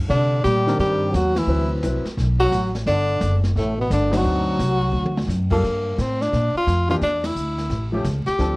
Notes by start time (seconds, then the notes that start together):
0.09 C3 D3 D4, brush sweep, kick, snare
0.44 A#2 G3 G4, kick, snare, hi-hat pedal
0.66 D#3 C4 D4 A#4, snare
0.79 G2 G3 G4, brush sweep, kick, snare
1.12 D#2 F#3 F#4, kick, snare, hi-hat pedal
1.36 E3 E4, snare, ride
1.47 D2 F#3 C4 E4 B4, brush sweep
1.82 C2 F#3 C4 E4 B4, kick, snare, hi-hat pedal
2.05 snare
2.17 B1, brush sweep, kick, snare
2.39 F#3 F#4
2.51 A1, kick, snare, hi-hat pedal
2.75 snare
2.86 G1 D3 D4, brush sweep, kick, snare
3.20 F#1, kick, snare, hi-hat pedal
3.44 snare
3.55 A1 A2 A3, brush sweep, kick, snare
3.78 B2 B3
3.90 G1 D3 D4, kick, snare, hi-hat pedal
4.11 F#3 C4 D4 D#4 F#4, snare, ride
4.17 F#4
4.24 D2, brush sweep
4.59 C2, kick, snare, hi-hat pedal
4.92 D2
5.06 mid tom
5.17 snare
5.27 F#2, snare, hi-hat pedal
5.50 G3 A#3 F4 A4, kick, crash
5.63 G2, brush sweep, kick, snare
5.98 A2 C4, kick, snare, hi-hat pedal
6.21 D4, snare
6.32 A#2, brush sweep, kick, snare
6.54 F4, muted upright bass stroke
6.67 F2, kick, snare, hi-hat pedal
6.89 E3 A#3 D4 F4 G4, snare
7.01 E2 D4, brush sweep, kick, snare
7.24 E4, snare, ride
7.35 D2, hi-hat pedal
7.58 snare
7.70 A1, brush sweep, kick, snare
7.92 F3 A3 C#4 G4
8.04 C#2, kick, snare, hi-hat pedal
8.27 G4, muted upright bass stroke, snare
8.39 D2 F3 C4 D4 A4, brush sweep, kick, snare